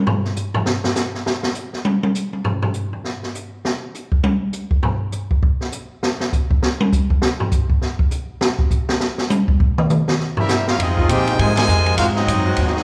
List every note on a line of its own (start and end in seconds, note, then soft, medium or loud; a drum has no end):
0.07 floor tom loud
0.25 snare soft
0.36 hi-hat pedal medium
0.54 floor tom loud
0.66 snare loud
0.84 snare loud
0.95 snare loud
0.95 hi-hat pedal medium
1.14 snare soft
1.26 snare loud
1.43 snare loud
1.54 hi-hat pedal medium
1.73 snare medium
1.85 high tom loud
2.03 high tom medium
2.15 hi-hat pedal medium
2.33 high tom soft
2.44 floor tom loud
2.62 floor tom loud
2.74 hi-hat pedal medium
2.93 floor tom soft
3.04 snare medium
3.23 snare soft
3.35 hi-hat pedal medium
3.65 snare loud
3.94 hi-hat pedal medium
4.12 kick medium
4.23 high tom loud
4.53 hi-hat pedal medium
4.71 kick medium
4.83 floor tom loud
5.12 hi-hat pedal medium
5.31 kick medium
5.43 kick medium
5.61 snare medium
5.72 hi-hat pedal medium
6.03 snare loud
6.20 snare medium
6.33 kick medium
6.33 hi-hat pedal medium
6.51 kick medium
6.62 snare loud
6.80 high tom loud
6.92 kick medium
6.92 hi-hat pedal medium
7.10 kick medium
7.22 snare loud
7.40 floor tom medium
7.51 kick medium
7.51 hi-hat pedal medium
7.70 kick medium
7.82 snare medium
7.99 kick medium
8.11 hi-hat pedal medium
8.41 snare loud
8.59 kick medium
8.71 kick medium
8.71 hi-hat pedal medium
8.89 snare loud
9.00 snare loud
9.18 snare loud
9.30 hi-hat pedal medium
9.30 high tom loud
9.48 kick medium
9.60 kick loud
9.78 mid tom loud
9.90 hi-hat pedal medium
9.90 mid tom loud
10.08 snare loud
10.20 snare soft
10.37 10.65 G3 medium
10.37 10.65 A#3 medium
10.37 10.66 C4 medium
10.37 10.65 E4 loud
10.37 10.66 G4 medium
10.37 10.66 A#4 medium
10.37 10.66 E5 medium
10.37 floor tom loud
10.49 snare loud
10.49 hi-hat pedal medium
10.67 10.80 C#4 medium
10.67 10.79 F4 medium
10.67 10.80 G4 medium
10.67 10.80 A#4 medium
10.67 10.80 F5 medium
10.67 snare loud
10.77 11.08 F2 medium
10.77 10.99 F3 soft
10.77 11.08 G#3 medium
10.77 11.06 C4 medium
10.77 10.99 C4 medium
10.77 11.06 D#4 medium
10.77 ride medium
10.82 11.10 C4 medium
10.82 10.99 D#4 medium
10.82 11.09 F4 medium
10.82 11.11 G#4 loud
10.82 11.00 G#4 soft
10.82 11.09 D#5 loud
10.96 11.36 D#3 loud
10.96 11.36 G#3 medium
10.96 11.36 C4 loud
10.96 11.36 F4 loud
10.96 kick medium
11.08 11.37 A#2 loud
11.08 11.28 F3 medium
11.08 11.36 C4 loud
11.08 11.28 C4 medium
11.08 11.36 D#4 loud
11.08 11.29 D#4 medium
11.08 11.37 F4 medium
11.08 11.36 G4 loud
11.08 11.29 G#4 medium
11.08 11.38 C5 medium
11.08 11.37 D#5 medium
11.08 11.37 G5 loud
11.08 hi-hat pedal medium
11.08 ride medium
11.27 ride medium
11.38 11.67 G#2 loud
11.38 11.54 C3 loud
11.38 11.54 D#3 loud
11.38 11.58 F3 medium
11.38 11.54 G#3 loud
11.38 11.59 C4 soft
11.38 11.58 D#4 medium
11.38 11.55 F4 medium
11.38 11.55 C5 loud
11.38 11.55 D#5 loud
11.38 11.55 G#5 loud
11.38 ride medium
11.42 11.59 G#4 medium
11.55 11.95 C3 medium
11.55 11.95 D#3 loud
11.55 11.95 G#3 loud
11.55 11.95 F4 loud
11.55 11.95 C5 medium
11.55 11.95 D#5 medium
11.55 11.95 G#5 loud
11.55 snare loud
11.55 ride medium
11.68 11.97 F2 medium
11.68 11.87 F3 medium
11.68 11.88 C4 medium
11.68 11.88 D#4 medium
11.68 11.88 G#4 medium
11.68 hi-hat pedal medium
11.86 ride medium
11.97 12.27 G#2 medium
11.97 12.17 G#2 soft
11.97 12.10 D#3 medium
11.97 12.18 F#3 medium
11.97 12.10 G#3 medium
11.97 12.10 C4 medium
11.97 12.19 C4 soft
11.97 12.05 C#4 medium
11.97 12.06 F4 medium
11.97 12.05 F#4 medium
11.97 12.10 F#4 loud
11.97 12.06 A#4 loud
11.97 12.05 F5 loud
11.97 ride medium
12.02 12.19 D#4 medium
12.14 12.71 F#3 medium
12.14 12.70 C4 medium
12.14 12.71 C4 medium
12.14 12.71 D#4 medium
12.14 12.71 F#4 medium
12.14 12.71 G#4 medium
12.14 12.71 D#5 loud
12.14 snare medium
12.27 12.56 F#2 loud
12.27 12.47 G#2 medium
12.27 12.47 F#3 medium
12.27 12.48 C4 medium
12.27 12.48 D#4 medium
12.27 hi-hat pedal medium
12.27 ride medium
12.45 12.83 D#3 loud
12.45 12.83 G#3 loud
12.45 12.83 C4 loud
12.45 12.83 F#4 loud
12.56 12.83 D#2 loud
12.56 12.77 G#2 medium
12.56 12.77 F#3 medium
12.56 12.78 C4 medium
12.56 ride medium
12.61 12.78 D#4 medium
12.67 snare soft
12.72 12.83 F#3 medium
12.72 12.83 C4 medium
12.72 12.83 D#4 medium
12.72 12.83 F#4 medium
12.72 12.83 G#4 medium
12.72 12.83 D#5 loud
12.77 snare medium